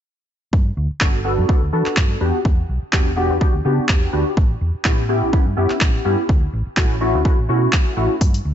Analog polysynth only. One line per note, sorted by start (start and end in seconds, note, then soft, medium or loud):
1.00 1.19 B3 medium
1.00 1.19 D4 medium
1.00 1.19 F#4 medium
1.00 1.20 A4 loud
1.24 1.46 B3 medium
1.24 1.46 D4 medium
1.24 1.46 F#4 medium
1.24 1.47 A4 medium
1.48 1.61 B3 loud
1.48 1.61 D4 medium
1.48 1.61 F#4 medium
1.48 1.61 A4 loud
1.73 2.18 B3 medium
1.73 2.18 D4 medium
1.73 2.19 F#4 medium
1.73 2.19 A4 medium
2.20 2.39 B3 medium
2.20 2.39 D4 medium
2.20 2.39 F#4 medium
2.20 2.40 G4 medium
2.93 3.11 B3 medium
2.93 3.11 D4 medium
2.93 3.11 F#4 medium
2.93 3.12 G4 loud
3.16 3.38 B3 medium
3.16 3.38 D4 medium
3.16 3.38 F#4 medium
3.16 3.39 G4 loud
3.41 3.53 B3 loud
3.41 3.53 D4 medium
3.41 3.53 F#4 medium
3.41 3.53 G4 loud
3.65 4.10 B3 medium
3.65 4.10 D4 medium
3.65 4.11 F#4 medium
3.65 4.11 G4 medium
4.13 4.31 B3 medium
4.13 4.31 D4 medium
4.13 4.32 F#4 medium
4.13 4.32 G4 medium
4.84 5.03 B3 medium
4.84 5.03 C#4 medium
4.84 5.03 E4 medium
4.84 5.04 G4 loud
5.09 5.30 B3 medium
5.09 5.30 C#4 medium
5.09 5.31 E4 medium
5.09 5.31 G4 loud
5.33 5.45 B3 medium
5.33 5.45 C#4 medium
5.33 5.45 E4 medium
5.33 5.45 G4 loud
5.57 6.02 B3 medium
5.57 6.03 C#4 medium
5.57 6.03 E4 medium
5.57 6.03 G4 medium
6.05 6.23 B3 medium
6.05 6.23 C#4 medium
6.05 6.24 E4 medium
6.05 6.24 G4 medium
6.77 6.95 A3 medium
6.77 6.95 C#4 medium
6.77 6.96 E4 medium
6.77 6.96 F#4 loud
7.01 7.22 A3 medium
7.01 7.23 C#4 medium
7.01 7.23 E4 medium
7.01 7.23 F#4 loud
7.25 7.37 A3 medium
7.25 7.37 C#4 medium
7.25 7.37 E4 medium
7.25 7.38 F#4 loud
7.49 7.94 A3 medium
7.49 7.94 C#4 medium
7.49 7.95 E4 medium
7.49 7.95 F#4 medium
7.97 8.15 A3 medium
7.97 8.15 C#4 medium
7.97 8.15 E4 medium
7.97 8.16 F#4 medium